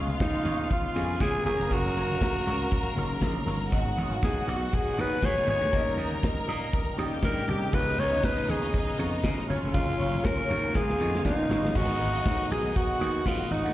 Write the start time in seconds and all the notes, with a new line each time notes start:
Already playing: C#2 C#3 G#3 B3 F4 F5
0.08 B3 F4 G#4 D#5, high conga
0.20 D#4, muted clean electric guitar stroke, kick, snare, closed hi-hat
0.33 muted clean electric guitar stroke, muted conga
0.45 D#2 B3 F4 G#4 C#5, open hi-hat, low conga
0.59 B3 F4 G#4 C#5
0.70 F4, kick, closed hi-hat, muted conga, low conga
0.84 muted clean electric guitar stroke
0.94 F2 C#3 G#3 B3 F4 G4 G#4 C#5 G#5, open hi-hat, high conga
1.02 G#4
1.09 muted clean electric guitar stroke
1.20 C#3 G#4, kick, snare, closed hi-hat, muted conga, high conga
1.34 muted clean electric guitar stroke, muted conga
1.44 F#1 C#3 F#3 A#3 C#4 F4 G#4 A#4 C#5 F5 A#5, open hi-hat, high conga, low conga
1.59 F1, muted clean electric guitar stroke
1.70 F#1 C#4 F4 F#4 A#4 C#5, kick, closed hi-hat, muted conga
1.84 muted clean electric guitar stroke, muted conga
1.95 F#1 C#4 F4 A#4 C#5, open hi-hat
2.10 C#4 F4 A#4 C#5, high conga
2.21 kick, snare, closed hi-hat
2.35 muted clean electric guitar stroke, muted conga
2.46 C#2 C#4 F4 A#4 C#5, open hi-hat, low conga
2.61 C#4 F4
2.71 kick, closed hi-hat, muted conga, low conga
2.86 muted clean electric guitar stroke
2.95 F#1 C#3 F#3 A#3 C#4 D#4 F4 A#4 C#5, open hi-hat, high conga
3.03 F4
3.10 muted clean electric guitar stroke
3.20 A#1, kick, snare, closed hi-hat, muted conga, high conga
3.36 muted clean electric guitar stroke
3.46 G1 C#4 F4 A#4 C#5, open hi-hat, high conga, low conga
3.60 muted clean electric guitar stroke
3.71 G#1 B2 D#3 F#3 G#3 B3 C#4 F#4 G#4 D#5 F#5, kick, closed hi-hat, muted conga
3.80 D#4
3.85 muted clean electric guitar stroke
3.96 G#1 B3 F#4 G#4 D#5, open hi-hat
4.11 B3 F#4 G#4 F5, high conga
4.23 G#4, kick, snare, closed hi-hat
4.37 muted clean electric guitar stroke
4.47 B1 B3 F#4 G#4 D#5, open hi-hat, low conga
4.62 B3 F#4 G#4 D#5
4.73 G#4, kick, closed hi-hat, low conga
4.87 muted clean electric guitar stroke
4.97 D#2 B2 F#3 G#3 B3 D#4 F#4 G#4 B4 D#5, open hi-hat, high conga
5.12 muted clean electric guitar stroke
5.22 G#2 G#4 C#5 G#5, kick, snare, closed hi-hat, high conga
5.36 muted clean electric guitar stroke, muted conga
5.47 G#1 B3 F#4 G#4 C#5 D#5, open hi-hat, high conga, low conga
5.61 D2, muted clean electric guitar stroke
5.72 D#2 C#3 F3 G3 A#3 C#4 D#4 G4 A#4 D#5 A#5, kick, closed hi-hat, muted conga
5.79 G3
5.87 muted clean electric guitar stroke
5.97 D#2 C#4 G4 A#4 D#5, open hi-hat
6.12 C#4 G4 A#4 D#5, high conga
6.22 muted clean electric guitar stroke, kick, snare, closed hi-hat
6.37 muted clean electric guitar stroke, muted conga
6.47 A#2 C#4 G4 A#4 D#5, open hi-hat, low conga
6.62 C#4 G4 A#4 D#5
6.72 kick, closed hi-hat, low conga
6.87 muted clean electric guitar stroke
6.97 D#2 C#3 G3 A#3 C#4 D#4 G4 A#4 D#5 G5, open hi-hat, high conga
7.12 muted clean electric guitar stroke
7.22 G2 A#4, kick, snare, closed hi-hat, muted conga, high conga
7.37 muted clean electric guitar stroke, muted conga
7.48 C2 C#4 G4 A#4 D#5, open hi-hat, high conga, low conga
7.62 muted clean electric guitar stroke
7.73 C#2 C#3 G#3 B3 D#4 F4 G#4 B4 C#5 D#5, kick, closed hi-hat
7.87 muted clean electric guitar stroke
7.98 C#2 B3 F4 G#4 C#5, open hi-hat
8.12 B3 F4 G#4 D#5, high conga
8.23 B4, kick, snare, closed hi-hat
8.37 muted clean electric guitar stroke, muted conga
8.47 D#2 B3 F4 G#4 C#5, open hi-hat, low conga
8.62 B3 F4 G#4 C#5
8.73 kick, closed hi-hat, low conga
8.87 muted clean electric guitar stroke, muted conga
8.98 F2 C#3 G#3 B3 F4 G#4 C#5, open hi-hat, high conga
9.13 muted clean electric guitar stroke
9.23 C#3, kick, snare, closed hi-hat, muted conga, high conga
9.37 muted clean electric guitar stroke
9.48 F#1 C#3 F#3 A3 A#3 C#4 F4 A#4 C#5, open hi-hat, high conga, low conga
9.56 A#3
9.63 F1, muted clean electric guitar stroke
9.74 F#1 C#4 F4 A#4 C#5, kick, closed hi-hat, muted conga
9.90 muted conga
9.98 F#1 C#4 F4 A#4 C#5, open hi-hat
10.12 C#4 F4 A#4 C#5, high conga
10.25 A#4, kick, snare, closed hi-hat
10.37 muted clean electric guitar stroke, muted conga
10.48 D#2 C#4 F4 A#4 C#5, open hi-hat, low conga
10.63 C#4 F4 A#4 C#5
10.74 C#2 C#3 G#3 B3 F4 G#4 F5, kick, snare, muted conga, low conga
10.88 muted clean electric guitar stroke, snare
10.99 F2 C#3 G#3 B3 D#4 F4 G#4 C#5, high conga
11.13 muted clean electric guitar stroke, snare
11.25 D#2 D#4, kick, snare, high conga
11.38 muted clean electric guitar stroke, muted conga
11.49 G1 B3 F4 G#4 C#5, snare, high conga, low conga
11.64 muted clean electric guitar stroke, snare
11.74 G#1 D#3 F#3 G#3 B3 D#4 F#4 G#4 D#5, kick, crash
12.00 G#1 B3 F#4 G#4 D#5, open hi-hat
12.12 B3 F#4 G#4 F5
12.25 D#3 F#3 G#3 B3 F#4, kick, snare, closed hi-hat
12.39 muted clean electric guitar stroke
12.50 B1 B3 F#4 G#4 D#5, open hi-hat
12.64 B3 F#4 G#4 D#5
12.75 F#4 F#5, kick, closed hi-hat
12.88 muted clean electric guitar stroke
12.99 D#2 B3 F#4 G#4 D#5, open hi-hat
13.14 muted clean electric guitar stroke
13.26 G#2 F4, kick, snare, closed hi-hat
13.39 muted clean electric guitar stroke
13.50 G#1 B3 D#4 F#4 G#4 D#5, open hi-hat
13.65 D2, muted clean electric guitar stroke